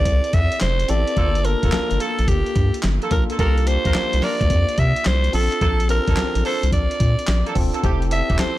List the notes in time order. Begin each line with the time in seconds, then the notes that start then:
Already playing: C4 E4 G4 G#4 A4 D5
0.05 C2, kick, closed hi-hat
0.24 closed hi-hat
0.33 F2 E5, kick, closed hi-hat
0.52 closed hi-hat
0.60 F1 C5, snare, clap, closed hi-hat
0.80 closed hi-hat
0.88 A1 C4 E4 G4 A4 D5, closed hi-hat
1.07 closed hi-hat
1.16 G1 A#3 D4 F4 A4, kick, closed hi-hat
1.35 closed hi-hat
1.44 A#3 D4 F4 A4 A#4, closed hi-hat
1.63 F1 A#3 F4 A4, kick, closed hi-hat
1.72 G1 A#3 D4 F4 A4, snare, clap, closed hi-hat
1.91 G1, closed hi-hat
2.00 A#3 F4 A4, closed hi-hat
2.19 A#1, closed hi-hat
2.28 G1 G4, kick, closed hi-hat
2.46 closed hi-hat
2.56 G2, kick, closed hi-hat
2.74 closed hi-hat
2.83 G1, snare, clap, closed hi-hat
3.02 A#3 F4 A4, closed hi-hat
3.11 B1 A#3 D4 F4 A4 A#4, kick, closed hi-hat
3.30 A#3 F4 A4, closed hi-hat
3.38 C2 A#3 D4 F4 G4 A4 A#4, kick, closed hi-hat
3.58 closed hi-hat
3.66 A#3 D4 F4 G4 C5, closed hi-hat
3.85 A#1 D4 F4 A#4, kick, closed hi-hat
3.94 C2 A#3 D4 F4 G4, snare, clap, closed hi-hat
4.13 C2, closed hi-hat
4.22 D4 F4 A#4 D5, snare, open hi-hat
4.41 D2, kick, closed hi-hat
4.50 F2, kick, closed hi-hat
4.69 closed hi-hat
4.78 C3 E5, kick, closed hi-hat
4.96 closed hi-hat
5.05 C2 C5, snare, clap, closed hi-hat
5.24 closed hi-hat
5.33 A#1 C4 D4 F4 A4, open hi-hat
5.52 closed hi-hat
5.61 A#1 A#3 D4 A4, kick, closed hi-hat
5.80 closed hi-hat
5.89 C4 D4 F4 A4 A#4, closed hi-hat
6.07 A1 A#3 D4 A4, kick, closed hi-hat
6.16 A#1 C4 D4 F4 A4, snare, clap, closed hi-hat
6.35 A#1, closed hi-hat
6.44 A#3 D4 A4 C5, open hi-hat
6.63 C2, closed hi-hat
6.72 A#1 D5, kick, closed hi-hat
6.91 closed hi-hat
7.00 A#2, kick, closed hi-hat
7.19 closed hi-hat
7.27 A#1, snare, clap, closed hi-hat
7.46 A#3 D4 A4, closed hi-hat
7.55 E1 C4 D4 F4 A4, kick, open hi-hat
7.74 A#3 D4 A4, closed hi-hat
7.83 F1 A3 C4 E4 G4 A4, kick, closed hi-hat
8.02 closed hi-hat
8.11 C4 E4 G4 A4 E5, closed hi-hat
8.29 E1 A3 E4 G4, kick, closed hi-hat
8.38 F1 C4 E4 G4 A4 C5, snare, clap, closed hi-hat